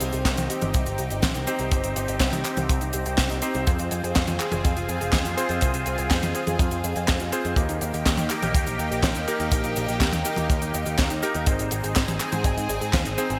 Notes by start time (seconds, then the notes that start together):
Already playing: C4 D#4 G4 C5
0.01 C2 G4, closed hi-hat, cabasa
0.13 C2 G4, closed hi-hat, cabasa
0.25 C2 C4, kick, snare, clap, closed hi-hat, cabasa
0.37 C2 D#4, closed hi-hat, high tom, cabasa
0.50 G4, closed hi-hat, cabasa
0.61 G1 G4, closed hi-hat, high tom, cabasa
0.74 C2 C4, kick, closed hi-hat, cabasa
0.86 G1 D#4, closed hi-hat, cabasa
0.98 C2 G4, closed hi-hat, cabasa
1.10 G1 G4, closed hi-hat, cabasa
1.22 A#1 C4, kick, snare, clap, closed hi-hat, high tom, cabasa
1.34 C2 D#4, closed hi-hat, cabasa
1.47 C4 D#4 G4 C5, closed hi-hat, cabasa
1.59 C2 G4, closed hi-hat, cabasa
1.71 G1 C4 D#4 G4 C5, kick, closed hi-hat, cabasa
1.84 G1 D#4, closed hi-hat, cabasa
1.96 G1 G4, closed hi-hat, cabasa
2.08 G1 G4, closed hi-hat, cabasa
2.20 C2 C4, kick, snare, clap, closed hi-hat, cabasa
2.33 C2 D#4, closed hi-hat, high tom, cabasa
2.45 G4, clap, closed hi-hat, cabasa
2.57 C2 G4, closed hi-hat, high tom, cabasa
2.69 C2 C4, kick, closed hi-hat, cabasa
2.81 C2 D#4, closed hi-hat, cabasa
2.93 C2 G4, closed hi-hat, cabasa
3.05 C2 G4, closed hi-hat, cabasa
3.18 C2 C4, kick, snare, clap, closed hi-hat, cabasa
3.29 C2 D#4, closed hi-hat, cabasa
3.42 C4 D#4 G4 C5, closed hi-hat, cabasa
3.54 C2 G4, closed hi-hat, cabasa
3.67 F2 C4 F4 G#4 C5, kick, closed hi-hat, cabasa
3.79 F2 F4, closed hi-hat, cabasa
3.91 F2 G#4, closed hi-hat, cabasa
4.04 F2 G#4, closed hi-hat, cabasa
4.15 F2 C4, kick, snare, clap, closed hi-hat, cabasa
4.27 F2 F4, closed hi-hat, high tom, cabasa
4.39 G#4, clap, closed hi-hat, cabasa
4.52 F1 G#4, closed hi-hat, high tom, cabasa
4.64 F2 C4, kick, closed hi-hat, cabasa
4.76 F1 F4, closed hi-hat, cabasa
4.89 F2 G#4, closed hi-hat, cabasa
5.01 F1 G#4, closed hi-hat, cabasa
5.13 D#2 C4, kick, snare, clap, closed hi-hat, high tom, cabasa
5.25 F2 F4, closed hi-hat, cabasa
5.37 C4 F4 G#4 C5, closed hi-hat, cabasa
5.49 F2 G#4, closed hi-hat, cabasa
5.61 C2 C4 F4 G#4 C5, kick, closed hi-hat, cabasa
5.74 C2 F4, closed hi-hat, cabasa
5.86 C2 G#4, closed hi-hat, cabasa
5.98 C2 G#4, closed hi-hat, cabasa
6.10 F2 C4, kick, snare, clap, closed hi-hat, cabasa
6.23 F2 F4, closed hi-hat, high tom, cabasa
6.35 G#4, closed hi-hat, cabasa
6.47 F2 G#4, closed hi-hat, high tom, cabasa
6.59 F2 C4, kick, closed hi-hat, cabasa
6.71 F2 F4, closed hi-hat, cabasa
6.84 F2 G#4, closed hi-hat, cabasa
6.96 F2 G#4, closed hi-hat, cabasa
7.08 F2 C4, kick, snare, clap, closed hi-hat, cabasa
7.20 F2 F4, closed hi-hat, cabasa
7.32 C4 F4 G#4 C5, closed hi-hat, cabasa
7.45 F2 G#4, closed hi-hat, cabasa
7.56 D#2 A#3 D#4 G4 A#4, kick, closed hi-hat, cabasa
7.69 D#2 D#4, closed hi-hat, cabasa
7.81 D#2 G4, closed hi-hat, cabasa
7.94 D#2 G4, closed hi-hat, cabasa
8.06 D#2 A#3, kick, snare, clap, closed hi-hat, cabasa
8.17 D#2 D#4, closed hi-hat, high tom, cabasa
8.29 G4, clap, closed hi-hat, cabasa
8.42 A#1 G4, closed hi-hat, high tom, cabasa
8.54 D#2 A#3, kick, closed hi-hat, cabasa
8.66 A#1 D#4, closed hi-hat, cabasa
8.79 D#2 G4, closed hi-hat, cabasa
8.91 A#1 G4, closed hi-hat, cabasa
9.03 A#1 A#3, kick, snare, clap, closed hi-hat, high tom, cabasa
9.15 D#2 D#4, closed hi-hat, cabasa
9.28 A#3 D#4 G4 A#4, closed hi-hat, cabasa
9.40 D#2 G4, closed hi-hat, cabasa
9.51 A#1 A#3 D#4 G4 A#4, kick, closed hi-hat, cabasa
9.64 A#1 D#4, closed hi-hat, cabasa
9.76 A#1 G4, closed hi-hat, cabasa
9.88 A#1 G4, closed hi-hat, cabasa
10.00 D#2 A#3, kick, snare, clap, closed hi-hat, cabasa
10.13 D#2 D#4, closed hi-hat, high tom, cabasa
10.25 G4, closed hi-hat, cabasa
10.36 D#2 G4, closed hi-hat, high tom, cabasa
10.50 D#2 A#3, kick, closed hi-hat, cabasa
10.62 D#2 D#4, closed hi-hat, cabasa
10.74 D#2 G4, closed hi-hat, cabasa
10.86 D#2 G4, closed hi-hat, cabasa
10.98 D#2 A#3, kick, snare, clap, closed hi-hat, cabasa
11.10 D#2 D#4, closed hi-hat, cabasa
11.22 A#3 D#4 G4 A#4, closed hi-hat, cabasa
11.35 D#2 G4, closed hi-hat, cabasa
11.46 G#1 C4 D#4 G#4 C5, kick, closed hi-hat, cabasa
11.59 G#1 D#4, closed hi-hat, cabasa
11.71 G#1 G#4, closed hi-hat, cabasa
11.84 G#1 G#4, closed hi-hat, cabasa
11.96 G#1 C4, kick, snare, clap, closed hi-hat, cabasa
12.08 G#1 D#4, closed hi-hat, high tom, cabasa
12.20 G#4, clap, closed hi-hat, cabasa
12.32 G#2 G#4, closed hi-hat, high tom, cabasa
12.44 G#1 C4, kick, closed hi-hat, cabasa
12.57 G#2 D#4, closed hi-hat, cabasa
12.69 G#1 G#4, closed hi-hat, cabasa
12.81 G#2 G#4, closed hi-hat, cabasa
12.93 D#2 C4, kick, snare, clap, closed hi-hat, high tom, cabasa
13.05 G#1 D#4, closed hi-hat, cabasa
13.18 C4 D#4 G#4 C5, closed hi-hat, cabasa
13.30 G#1 G#4, closed hi-hat, cabasa